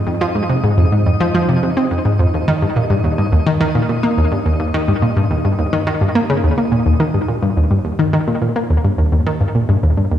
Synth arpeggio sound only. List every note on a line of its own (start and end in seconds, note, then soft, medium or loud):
0.07 0.14 F2 medium
0.21 0.26 F3 loud
0.35 0.40 G#2 medium
0.50 0.57 C3 medium
0.64 0.71 G#2 medium
0.78 0.89 F2 medium
0.92 1.03 G#2 medium
1.06 1.11 F2 medium
1.20 1.31 F3 loud
1.34 1.39 F3 loud
1.49 1.56 C3 medium
1.63 1.70 C3 medium
1.77 1.81 C4 medium
1.91 1.98 F2 medium
2.05 2.16 G#2 medium
2.19 2.30 F2 medium
2.34 2.41 D#2 medium
2.48 2.52 D#3 loud
2.62 2.66 G2 medium
2.76 2.83 A#2 medium
2.90 2.97 G2 medium
3.04 3.15 D#2 medium
3.18 3.29 G2 medium
3.32 3.37 D#2 medium
3.47 3.58 D#3 loud
3.60 3.65 D#3 loud
3.75 3.82 A#2 medium
3.89 3.96 A#2 medium
4.03 4.08 A#3 medium
4.18 4.25 D#2 medium
4.32 4.43 G2 medium
4.46 4.57 D#2 medium
4.60 4.67 D#2 medium
4.74 4.78 D#3 loud
4.88 4.93 G2 medium
5.02 5.10 A#2 medium
5.17 5.24 G2 medium
5.31 5.42 D#2 medium
5.45 5.56 G2 medium
5.59 5.63 D#2 medium
5.73 5.84 D#3 loud
5.87 5.91 D#3 loud
6.01 6.09 G2 medium
6.15 6.20 A#3 loud
6.30 6.34 C#3 loud
6.44 6.48 D#2 medium
6.58 6.62 A#3 medium
6.72 6.83 A#2 medium
6.86 6.93 D#2 medium
7.00 7.05 D#3 loud
7.14 7.19 G2 medium
7.28 7.36 A#2 medium
7.42 7.50 G2 medium
7.57 7.68 D#2 medium
7.71 7.82 G2 medium
7.85 7.89 D#2 medium
7.99 8.10 D#3 loud
8.13 8.18 D#3 loud
8.28 8.35 A#2 medium
8.42 8.49 A#2 medium
8.56 8.60 A#3 medium
8.70 8.78 D#2 medium
8.84 8.96 G2 medium
8.98 9.10 D#2 medium
9.12 9.20 D#2 medium
9.27 9.31 D#3 loud
9.41 9.45 G2 medium
9.55 9.62 A#2 medium
9.69 9.77 G2 medium
9.83 9.94 D#2 medium
9.97 10.08 G2 medium
10.11 10.16 D#2 medium